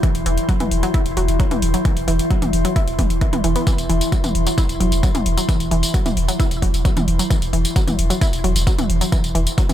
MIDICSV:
0, 0, Header, 1, 5, 480
1, 0, Start_track
1, 0, Tempo, 454545
1, 35, Time_signature, 4, 2, 24, 8
1, 10279, End_track
2, 0, Start_track
2, 0, Title_t, "Synth drone"
2, 0, Program_c, 0, 95
2, 0, Note_on_c, 0, 52, 76
2, 0, Note_on_c, 0, 64, 79
2, 10279, Note_off_c, 0, 52, 0
2, 10279, Note_off_c, 0, 64, 0
2, 10279, End_track
3, 0, Start_track
3, 0, Title_t, "Synth arpeggio sound"
3, 0, Program_c, 1, 84
3, 34, Note_on_c, 1, 52, 82
3, 85, Note_off_c, 1, 52, 0
3, 275, Note_on_c, 1, 52, 81
3, 326, Note_off_c, 1, 52, 0
3, 515, Note_on_c, 1, 54, 82
3, 545, Note_off_c, 1, 54, 0
3, 636, Note_on_c, 1, 52, 76
3, 686, Note_off_c, 1, 52, 0
3, 876, Note_on_c, 1, 54, 78
3, 926, Note_off_c, 1, 54, 0
3, 994, Note_on_c, 1, 64, 85
3, 1046, Note_off_c, 1, 64, 0
3, 1235, Note_on_c, 1, 54, 77
3, 1286, Note_off_c, 1, 54, 0
3, 1475, Note_on_c, 1, 54, 82
3, 1505, Note_off_c, 1, 54, 0
3, 1597, Note_on_c, 1, 52, 80
3, 1646, Note_off_c, 1, 52, 0
3, 1836, Note_on_c, 1, 54, 76
3, 1886, Note_off_c, 1, 54, 0
3, 1954, Note_on_c, 1, 52, 85
3, 2005, Note_off_c, 1, 52, 0
3, 2193, Note_on_c, 1, 52, 80
3, 2245, Note_off_c, 1, 52, 0
3, 2434, Note_on_c, 1, 54, 85
3, 2465, Note_off_c, 1, 54, 0
3, 2556, Note_on_c, 1, 52, 75
3, 2605, Note_off_c, 1, 52, 0
3, 2796, Note_on_c, 1, 54, 80
3, 2845, Note_off_c, 1, 54, 0
3, 2915, Note_on_c, 1, 64, 88
3, 2966, Note_off_c, 1, 64, 0
3, 3154, Note_on_c, 1, 52, 81
3, 3185, Note_off_c, 1, 52, 0
3, 3394, Note_on_c, 1, 52, 85
3, 3445, Note_off_c, 1, 52, 0
3, 3516, Note_on_c, 1, 52, 80
3, 3590, Note_off_c, 1, 52, 0
3, 3633, Note_on_c, 1, 52, 78
3, 3711, Note_off_c, 1, 52, 0
3, 3755, Note_on_c, 1, 59, 76
3, 3805, Note_off_c, 1, 59, 0
3, 3873, Note_on_c, 1, 52, 88
3, 3925, Note_off_c, 1, 52, 0
3, 4113, Note_on_c, 1, 52, 79
3, 4165, Note_off_c, 1, 52, 0
3, 4353, Note_on_c, 1, 54, 81
3, 4385, Note_off_c, 1, 54, 0
3, 4476, Note_on_c, 1, 52, 75
3, 4525, Note_off_c, 1, 52, 0
3, 4717, Note_on_c, 1, 54, 77
3, 4766, Note_off_c, 1, 54, 0
3, 4834, Note_on_c, 1, 64, 86
3, 4885, Note_off_c, 1, 64, 0
3, 5073, Note_on_c, 1, 54, 78
3, 5125, Note_off_c, 1, 54, 0
3, 5312, Note_on_c, 1, 54, 85
3, 5344, Note_off_c, 1, 54, 0
3, 5435, Note_on_c, 1, 52, 80
3, 5485, Note_off_c, 1, 52, 0
3, 5676, Note_on_c, 1, 54, 77
3, 5726, Note_off_c, 1, 54, 0
3, 5794, Note_on_c, 1, 52, 84
3, 5845, Note_off_c, 1, 52, 0
3, 6033, Note_on_c, 1, 52, 83
3, 6085, Note_off_c, 1, 52, 0
3, 6273, Note_on_c, 1, 54, 81
3, 6305, Note_off_c, 1, 54, 0
3, 6395, Note_on_c, 1, 52, 75
3, 6445, Note_off_c, 1, 52, 0
3, 6636, Note_on_c, 1, 54, 75
3, 6685, Note_off_c, 1, 54, 0
3, 6754, Note_on_c, 1, 64, 85
3, 6805, Note_off_c, 1, 64, 0
3, 6993, Note_on_c, 1, 54, 77
3, 7045, Note_off_c, 1, 54, 0
3, 7233, Note_on_c, 1, 54, 83
3, 7264, Note_off_c, 1, 54, 0
3, 7356, Note_on_c, 1, 52, 82
3, 7405, Note_off_c, 1, 52, 0
3, 7596, Note_on_c, 1, 54, 79
3, 7646, Note_off_c, 1, 54, 0
3, 7713, Note_on_c, 1, 52, 84
3, 7765, Note_off_c, 1, 52, 0
3, 7952, Note_on_c, 1, 52, 80
3, 8005, Note_off_c, 1, 52, 0
3, 8194, Note_on_c, 1, 54, 83
3, 8225, Note_off_c, 1, 54, 0
3, 8316, Note_on_c, 1, 52, 73
3, 8366, Note_off_c, 1, 52, 0
3, 8555, Note_on_c, 1, 54, 76
3, 8605, Note_off_c, 1, 54, 0
3, 8673, Note_on_c, 1, 64, 86
3, 8725, Note_off_c, 1, 64, 0
3, 8914, Note_on_c, 1, 54, 79
3, 8965, Note_off_c, 1, 54, 0
3, 9153, Note_on_c, 1, 54, 82
3, 9185, Note_off_c, 1, 54, 0
3, 9276, Note_on_c, 1, 52, 81
3, 9326, Note_off_c, 1, 52, 0
3, 9516, Note_on_c, 1, 54, 75
3, 9565, Note_off_c, 1, 54, 0
3, 9633, Note_on_c, 1, 52, 82
3, 9685, Note_off_c, 1, 52, 0
3, 9873, Note_on_c, 1, 52, 82
3, 9925, Note_off_c, 1, 52, 0
3, 10113, Note_on_c, 1, 54, 83
3, 10144, Note_off_c, 1, 54, 0
3, 10235, Note_on_c, 1, 52, 75
3, 10279, Note_off_c, 1, 52, 0
3, 10279, End_track
4, 0, Start_track
4, 0, Title_t, "Sub bass"
4, 0, Program_c, 2, 38
4, 157, Note_on_c, 2, 28, 78
4, 269, Note_off_c, 2, 28, 0
4, 275, Note_on_c, 2, 28, 106
4, 395, Note_off_c, 2, 28, 0
4, 637, Note_on_c, 2, 28, 78
4, 748, Note_off_c, 2, 28, 0
4, 755, Note_on_c, 2, 28, 98
4, 874, Note_off_c, 2, 28, 0
4, 1117, Note_on_c, 2, 28, 77
4, 1228, Note_off_c, 2, 28, 0
4, 1235, Note_on_c, 2, 28, 96
4, 1350, Note_off_c, 2, 28, 0
4, 1357, Note_on_c, 2, 28, 81
4, 1472, Note_off_c, 2, 28, 0
4, 1597, Note_on_c, 2, 28, 78
4, 1708, Note_off_c, 2, 28, 0
4, 1714, Note_on_c, 2, 28, 98
4, 1834, Note_off_c, 2, 28, 0
4, 2077, Note_on_c, 2, 28, 75
4, 2189, Note_off_c, 2, 28, 0
4, 2195, Note_on_c, 2, 28, 106
4, 2315, Note_off_c, 2, 28, 0
4, 2557, Note_on_c, 2, 28, 79
4, 2668, Note_off_c, 2, 28, 0
4, 2675, Note_on_c, 2, 28, 97
4, 2794, Note_off_c, 2, 28, 0
4, 3037, Note_on_c, 2, 28, 75
4, 3148, Note_off_c, 2, 28, 0
4, 3154, Note_on_c, 2, 28, 100
4, 3271, Note_off_c, 2, 28, 0
4, 3277, Note_on_c, 2, 28, 80
4, 3392, Note_off_c, 2, 28, 0
4, 3517, Note_on_c, 2, 28, 80
4, 3628, Note_off_c, 2, 28, 0
4, 3634, Note_on_c, 2, 28, 103
4, 3754, Note_off_c, 2, 28, 0
4, 3997, Note_on_c, 2, 28, 78
4, 4107, Note_off_c, 2, 28, 0
4, 4114, Note_on_c, 2, 28, 102
4, 4234, Note_off_c, 2, 28, 0
4, 4476, Note_on_c, 2, 28, 80
4, 4588, Note_off_c, 2, 28, 0
4, 4594, Note_on_c, 2, 28, 98
4, 4714, Note_off_c, 2, 28, 0
4, 4957, Note_on_c, 2, 28, 79
4, 5067, Note_off_c, 2, 28, 0
4, 5074, Note_on_c, 2, 28, 102
4, 5190, Note_off_c, 2, 28, 0
4, 5196, Note_on_c, 2, 28, 82
4, 5312, Note_off_c, 2, 28, 0
4, 5436, Note_on_c, 2, 28, 76
4, 5548, Note_off_c, 2, 28, 0
4, 5554, Note_on_c, 2, 28, 100
4, 5674, Note_off_c, 2, 28, 0
4, 5917, Note_on_c, 2, 28, 77
4, 6027, Note_off_c, 2, 28, 0
4, 6033, Note_on_c, 2, 28, 101
4, 6154, Note_off_c, 2, 28, 0
4, 6395, Note_on_c, 2, 28, 81
4, 6507, Note_off_c, 2, 28, 0
4, 6513, Note_on_c, 2, 28, 98
4, 6634, Note_off_c, 2, 28, 0
4, 6876, Note_on_c, 2, 28, 79
4, 6988, Note_off_c, 2, 28, 0
4, 6994, Note_on_c, 2, 28, 102
4, 7109, Note_off_c, 2, 28, 0
4, 7115, Note_on_c, 2, 28, 80
4, 7231, Note_off_c, 2, 28, 0
4, 7355, Note_on_c, 2, 28, 80
4, 7466, Note_off_c, 2, 28, 0
4, 7473, Note_on_c, 2, 28, 102
4, 7593, Note_off_c, 2, 28, 0
4, 7836, Note_on_c, 2, 28, 76
4, 7947, Note_off_c, 2, 28, 0
4, 7953, Note_on_c, 2, 28, 103
4, 8074, Note_off_c, 2, 28, 0
4, 8317, Note_on_c, 2, 28, 81
4, 8427, Note_off_c, 2, 28, 0
4, 8433, Note_on_c, 2, 28, 101
4, 8554, Note_off_c, 2, 28, 0
4, 8796, Note_on_c, 2, 28, 79
4, 8908, Note_off_c, 2, 28, 0
4, 8914, Note_on_c, 2, 28, 102
4, 9030, Note_off_c, 2, 28, 0
4, 9036, Note_on_c, 2, 28, 79
4, 9152, Note_off_c, 2, 28, 0
4, 9277, Note_on_c, 2, 28, 79
4, 9388, Note_off_c, 2, 28, 0
4, 9394, Note_on_c, 2, 28, 101
4, 9514, Note_off_c, 2, 28, 0
4, 9756, Note_on_c, 2, 28, 77
4, 9867, Note_off_c, 2, 28, 0
4, 9874, Note_on_c, 2, 28, 105
4, 9994, Note_off_c, 2, 28, 0
4, 10236, Note_on_c, 2, 28, 78
4, 10279, Note_off_c, 2, 28, 0
4, 10279, End_track
5, 0, Start_track
5, 0, Title_t, "Drums"
5, 34, Note_on_c, 9, 36, 126
5, 35, Note_on_c, 9, 42, 68
5, 140, Note_off_c, 9, 36, 0
5, 140, Note_off_c, 9, 42, 0
5, 157, Note_on_c, 9, 42, 65
5, 263, Note_off_c, 9, 42, 0
5, 274, Note_on_c, 9, 46, 108
5, 380, Note_off_c, 9, 46, 0
5, 396, Note_on_c, 9, 42, 69
5, 502, Note_off_c, 9, 42, 0
5, 514, Note_on_c, 9, 36, 124
5, 514, Note_on_c, 9, 42, 68
5, 620, Note_off_c, 9, 36, 0
5, 620, Note_off_c, 9, 42, 0
5, 636, Note_on_c, 9, 42, 66
5, 636, Note_on_c, 9, 47, 84
5, 742, Note_off_c, 9, 42, 0
5, 742, Note_off_c, 9, 47, 0
5, 754, Note_on_c, 9, 46, 112
5, 860, Note_off_c, 9, 46, 0
5, 877, Note_on_c, 9, 42, 63
5, 982, Note_off_c, 9, 42, 0
5, 994, Note_on_c, 9, 42, 67
5, 995, Note_on_c, 9, 36, 122
5, 1100, Note_off_c, 9, 36, 0
5, 1100, Note_off_c, 9, 42, 0
5, 1116, Note_on_c, 9, 42, 64
5, 1222, Note_off_c, 9, 42, 0
5, 1234, Note_on_c, 9, 46, 109
5, 1340, Note_off_c, 9, 46, 0
5, 1356, Note_on_c, 9, 42, 65
5, 1462, Note_off_c, 9, 42, 0
5, 1474, Note_on_c, 9, 42, 67
5, 1475, Note_on_c, 9, 36, 116
5, 1580, Note_off_c, 9, 36, 0
5, 1580, Note_off_c, 9, 42, 0
5, 1596, Note_on_c, 9, 42, 66
5, 1596, Note_on_c, 9, 47, 92
5, 1702, Note_off_c, 9, 42, 0
5, 1702, Note_off_c, 9, 47, 0
5, 1714, Note_on_c, 9, 46, 108
5, 1820, Note_off_c, 9, 46, 0
5, 1837, Note_on_c, 9, 42, 65
5, 1942, Note_off_c, 9, 42, 0
5, 1954, Note_on_c, 9, 42, 64
5, 1955, Note_on_c, 9, 36, 124
5, 2060, Note_off_c, 9, 36, 0
5, 2060, Note_off_c, 9, 42, 0
5, 2077, Note_on_c, 9, 42, 61
5, 2182, Note_off_c, 9, 42, 0
5, 2194, Note_on_c, 9, 46, 111
5, 2300, Note_off_c, 9, 46, 0
5, 2317, Note_on_c, 9, 42, 67
5, 2422, Note_off_c, 9, 42, 0
5, 2434, Note_on_c, 9, 42, 66
5, 2435, Note_on_c, 9, 36, 126
5, 2540, Note_off_c, 9, 36, 0
5, 2540, Note_off_c, 9, 42, 0
5, 2557, Note_on_c, 9, 42, 61
5, 2557, Note_on_c, 9, 47, 86
5, 2662, Note_off_c, 9, 42, 0
5, 2662, Note_off_c, 9, 47, 0
5, 2674, Note_on_c, 9, 46, 112
5, 2780, Note_off_c, 9, 46, 0
5, 2797, Note_on_c, 9, 42, 63
5, 2902, Note_off_c, 9, 42, 0
5, 2914, Note_on_c, 9, 36, 121
5, 2914, Note_on_c, 9, 42, 62
5, 3020, Note_off_c, 9, 36, 0
5, 3020, Note_off_c, 9, 42, 0
5, 3036, Note_on_c, 9, 42, 64
5, 3142, Note_off_c, 9, 42, 0
5, 3154, Note_on_c, 9, 36, 68
5, 3154, Note_on_c, 9, 46, 107
5, 3154, Note_on_c, 9, 47, 83
5, 3259, Note_off_c, 9, 46, 0
5, 3259, Note_off_c, 9, 47, 0
5, 3260, Note_off_c, 9, 36, 0
5, 3276, Note_on_c, 9, 42, 63
5, 3381, Note_off_c, 9, 42, 0
5, 3393, Note_on_c, 9, 42, 64
5, 3394, Note_on_c, 9, 36, 120
5, 3499, Note_off_c, 9, 42, 0
5, 3500, Note_off_c, 9, 36, 0
5, 3516, Note_on_c, 9, 42, 62
5, 3516, Note_on_c, 9, 47, 98
5, 3621, Note_off_c, 9, 42, 0
5, 3621, Note_off_c, 9, 47, 0
5, 3633, Note_on_c, 9, 46, 106
5, 3739, Note_off_c, 9, 46, 0
5, 3755, Note_on_c, 9, 42, 66
5, 3861, Note_off_c, 9, 42, 0
5, 3873, Note_on_c, 9, 42, 62
5, 3873, Note_on_c, 9, 54, 53
5, 3874, Note_on_c, 9, 36, 119
5, 3979, Note_off_c, 9, 42, 0
5, 3979, Note_off_c, 9, 54, 0
5, 3980, Note_off_c, 9, 36, 0
5, 3996, Note_on_c, 9, 42, 60
5, 3996, Note_on_c, 9, 54, 32
5, 4101, Note_off_c, 9, 42, 0
5, 4101, Note_off_c, 9, 54, 0
5, 4113, Note_on_c, 9, 46, 102
5, 4219, Note_off_c, 9, 46, 0
5, 4236, Note_on_c, 9, 42, 63
5, 4236, Note_on_c, 9, 54, 70
5, 4342, Note_off_c, 9, 42, 0
5, 4342, Note_off_c, 9, 54, 0
5, 4353, Note_on_c, 9, 42, 64
5, 4353, Note_on_c, 9, 54, 55
5, 4354, Note_on_c, 9, 36, 118
5, 4459, Note_off_c, 9, 36, 0
5, 4459, Note_off_c, 9, 42, 0
5, 4459, Note_off_c, 9, 54, 0
5, 4476, Note_on_c, 9, 42, 64
5, 4476, Note_on_c, 9, 47, 89
5, 4476, Note_on_c, 9, 54, 33
5, 4582, Note_off_c, 9, 42, 0
5, 4582, Note_off_c, 9, 47, 0
5, 4582, Note_off_c, 9, 54, 0
5, 4593, Note_on_c, 9, 46, 108
5, 4699, Note_off_c, 9, 46, 0
5, 4716, Note_on_c, 9, 42, 59
5, 4716, Note_on_c, 9, 54, 65
5, 4821, Note_off_c, 9, 42, 0
5, 4821, Note_off_c, 9, 54, 0
5, 4834, Note_on_c, 9, 36, 119
5, 4834, Note_on_c, 9, 42, 60
5, 4834, Note_on_c, 9, 54, 54
5, 4939, Note_off_c, 9, 36, 0
5, 4939, Note_off_c, 9, 42, 0
5, 4939, Note_off_c, 9, 54, 0
5, 4956, Note_on_c, 9, 42, 60
5, 4956, Note_on_c, 9, 54, 32
5, 5061, Note_off_c, 9, 42, 0
5, 5061, Note_off_c, 9, 54, 0
5, 5074, Note_on_c, 9, 46, 104
5, 5179, Note_off_c, 9, 46, 0
5, 5196, Note_on_c, 9, 42, 59
5, 5196, Note_on_c, 9, 54, 63
5, 5302, Note_off_c, 9, 42, 0
5, 5302, Note_off_c, 9, 54, 0
5, 5314, Note_on_c, 9, 36, 114
5, 5314, Note_on_c, 9, 42, 62
5, 5314, Note_on_c, 9, 54, 55
5, 5420, Note_off_c, 9, 36, 0
5, 5420, Note_off_c, 9, 42, 0
5, 5420, Note_off_c, 9, 54, 0
5, 5436, Note_on_c, 9, 42, 62
5, 5436, Note_on_c, 9, 47, 94
5, 5436, Note_on_c, 9, 54, 32
5, 5542, Note_off_c, 9, 42, 0
5, 5542, Note_off_c, 9, 47, 0
5, 5542, Note_off_c, 9, 54, 0
5, 5554, Note_on_c, 9, 46, 105
5, 5660, Note_off_c, 9, 46, 0
5, 5676, Note_on_c, 9, 42, 64
5, 5676, Note_on_c, 9, 54, 65
5, 5782, Note_off_c, 9, 42, 0
5, 5782, Note_off_c, 9, 54, 0
5, 5794, Note_on_c, 9, 36, 112
5, 5794, Note_on_c, 9, 42, 63
5, 5794, Note_on_c, 9, 54, 55
5, 5899, Note_off_c, 9, 36, 0
5, 5899, Note_off_c, 9, 42, 0
5, 5899, Note_off_c, 9, 54, 0
5, 5916, Note_on_c, 9, 42, 62
5, 5916, Note_on_c, 9, 54, 31
5, 6022, Note_off_c, 9, 42, 0
5, 6022, Note_off_c, 9, 54, 0
5, 6033, Note_on_c, 9, 46, 103
5, 6139, Note_off_c, 9, 46, 0
5, 6156, Note_on_c, 9, 42, 62
5, 6156, Note_on_c, 9, 54, 69
5, 6262, Note_off_c, 9, 42, 0
5, 6262, Note_off_c, 9, 54, 0
5, 6274, Note_on_c, 9, 36, 114
5, 6274, Note_on_c, 9, 42, 62
5, 6379, Note_off_c, 9, 36, 0
5, 6380, Note_off_c, 9, 42, 0
5, 6397, Note_on_c, 9, 42, 61
5, 6397, Note_on_c, 9, 47, 85
5, 6397, Note_on_c, 9, 54, 33
5, 6503, Note_off_c, 9, 42, 0
5, 6503, Note_off_c, 9, 47, 0
5, 6503, Note_off_c, 9, 54, 0
5, 6515, Note_on_c, 9, 46, 106
5, 6620, Note_off_c, 9, 46, 0
5, 6637, Note_on_c, 9, 42, 60
5, 6637, Note_on_c, 9, 54, 67
5, 6742, Note_off_c, 9, 42, 0
5, 6742, Note_off_c, 9, 54, 0
5, 6754, Note_on_c, 9, 36, 111
5, 6755, Note_on_c, 9, 42, 63
5, 6755, Note_on_c, 9, 54, 55
5, 6860, Note_off_c, 9, 36, 0
5, 6860, Note_off_c, 9, 42, 0
5, 6860, Note_off_c, 9, 54, 0
5, 6877, Note_on_c, 9, 42, 62
5, 6877, Note_on_c, 9, 54, 33
5, 6983, Note_off_c, 9, 42, 0
5, 6983, Note_off_c, 9, 54, 0
5, 6994, Note_on_c, 9, 36, 61
5, 6995, Note_on_c, 9, 46, 99
5, 7100, Note_off_c, 9, 36, 0
5, 7100, Note_off_c, 9, 46, 0
5, 7117, Note_on_c, 9, 42, 63
5, 7117, Note_on_c, 9, 54, 65
5, 7223, Note_off_c, 9, 42, 0
5, 7223, Note_off_c, 9, 54, 0
5, 7234, Note_on_c, 9, 36, 114
5, 7235, Note_on_c, 9, 42, 65
5, 7235, Note_on_c, 9, 54, 55
5, 7340, Note_off_c, 9, 36, 0
5, 7340, Note_off_c, 9, 42, 0
5, 7340, Note_off_c, 9, 54, 0
5, 7357, Note_on_c, 9, 42, 64
5, 7357, Note_on_c, 9, 47, 92
5, 7357, Note_on_c, 9, 54, 32
5, 7463, Note_off_c, 9, 42, 0
5, 7463, Note_off_c, 9, 47, 0
5, 7463, Note_off_c, 9, 54, 0
5, 7474, Note_on_c, 9, 46, 98
5, 7580, Note_off_c, 9, 46, 0
5, 7596, Note_on_c, 9, 42, 65
5, 7596, Note_on_c, 9, 54, 66
5, 7702, Note_off_c, 9, 42, 0
5, 7702, Note_off_c, 9, 54, 0
5, 7714, Note_on_c, 9, 36, 111
5, 7714, Note_on_c, 9, 42, 67
5, 7714, Note_on_c, 9, 54, 55
5, 7820, Note_off_c, 9, 36, 0
5, 7820, Note_off_c, 9, 42, 0
5, 7820, Note_off_c, 9, 54, 0
5, 7836, Note_on_c, 9, 42, 64
5, 7836, Note_on_c, 9, 54, 33
5, 7942, Note_off_c, 9, 42, 0
5, 7942, Note_off_c, 9, 54, 0
5, 7954, Note_on_c, 9, 46, 100
5, 8060, Note_off_c, 9, 46, 0
5, 8077, Note_on_c, 9, 42, 64
5, 8077, Note_on_c, 9, 54, 64
5, 8182, Note_off_c, 9, 42, 0
5, 8182, Note_off_c, 9, 54, 0
5, 8194, Note_on_c, 9, 36, 117
5, 8195, Note_on_c, 9, 42, 67
5, 8195, Note_on_c, 9, 54, 56
5, 8300, Note_off_c, 9, 36, 0
5, 8300, Note_off_c, 9, 42, 0
5, 8300, Note_off_c, 9, 54, 0
5, 8317, Note_on_c, 9, 42, 64
5, 8317, Note_on_c, 9, 47, 80
5, 8317, Note_on_c, 9, 54, 32
5, 8422, Note_off_c, 9, 42, 0
5, 8422, Note_off_c, 9, 47, 0
5, 8422, Note_off_c, 9, 54, 0
5, 8434, Note_on_c, 9, 46, 102
5, 8540, Note_off_c, 9, 46, 0
5, 8557, Note_on_c, 9, 42, 64
5, 8557, Note_on_c, 9, 54, 63
5, 8662, Note_off_c, 9, 42, 0
5, 8662, Note_off_c, 9, 54, 0
5, 8674, Note_on_c, 9, 36, 114
5, 8675, Note_on_c, 9, 42, 64
5, 8675, Note_on_c, 9, 54, 52
5, 8780, Note_off_c, 9, 36, 0
5, 8780, Note_off_c, 9, 42, 0
5, 8780, Note_off_c, 9, 54, 0
5, 8797, Note_on_c, 9, 42, 62
5, 8797, Note_on_c, 9, 54, 31
5, 8903, Note_off_c, 9, 42, 0
5, 8903, Note_off_c, 9, 54, 0
5, 8915, Note_on_c, 9, 46, 95
5, 9020, Note_off_c, 9, 46, 0
5, 9037, Note_on_c, 9, 42, 64
5, 9037, Note_on_c, 9, 54, 65
5, 9142, Note_off_c, 9, 42, 0
5, 9142, Note_off_c, 9, 54, 0
5, 9154, Note_on_c, 9, 36, 108
5, 9155, Note_on_c, 9, 42, 65
5, 9155, Note_on_c, 9, 54, 54
5, 9260, Note_off_c, 9, 36, 0
5, 9260, Note_off_c, 9, 42, 0
5, 9260, Note_off_c, 9, 54, 0
5, 9277, Note_on_c, 9, 42, 67
5, 9277, Note_on_c, 9, 47, 90
5, 9277, Note_on_c, 9, 54, 33
5, 9382, Note_off_c, 9, 42, 0
5, 9382, Note_off_c, 9, 47, 0
5, 9382, Note_off_c, 9, 54, 0
5, 9394, Note_on_c, 9, 46, 98
5, 9500, Note_off_c, 9, 46, 0
5, 9517, Note_on_c, 9, 42, 68
5, 9517, Note_on_c, 9, 54, 65
5, 9622, Note_off_c, 9, 42, 0
5, 9622, Note_off_c, 9, 54, 0
5, 9634, Note_on_c, 9, 42, 67
5, 9634, Note_on_c, 9, 54, 52
5, 9635, Note_on_c, 9, 36, 116
5, 9740, Note_off_c, 9, 36, 0
5, 9740, Note_off_c, 9, 42, 0
5, 9740, Note_off_c, 9, 54, 0
5, 9757, Note_on_c, 9, 42, 66
5, 9757, Note_on_c, 9, 54, 30
5, 9863, Note_off_c, 9, 42, 0
5, 9863, Note_off_c, 9, 54, 0
5, 9875, Note_on_c, 9, 46, 103
5, 9980, Note_off_c, 9, 46, 0
5, 9997, Note_on_c, 9, 42, 68
5, 9997, Note_on_c, 9, 54, 61
5, 10103, Note_off_c, 9, 42, 0
5, 10103, Note_off_c, 9, 54, 0
5, 10115, Note_on_c, 9, 36, 117
5, 10115, Note_on_c, 9, 42, 67
5, 10115, Note_on_c, 9, 54, 53
5, 10220, Note_off_c, 9, 36, 0
5, 10220, Note_off_c, 9, 42, 0
5, 10220, Note_off_c, 9, 54, 0
5, 10237, Note_on_c, 9, 42, 66
5, 10237, Note_on_c, 9, 47, 78
5, 10237, Note_on_c, 9, 54, 30
5, 10279, Note_off_c, 9, 42, 0
5, 10279, Note_off_c, 9, 47, 0
5, 10279, Note_off_c, 9, 54, 0
5, 10279, End_track
0, 0, End_of_file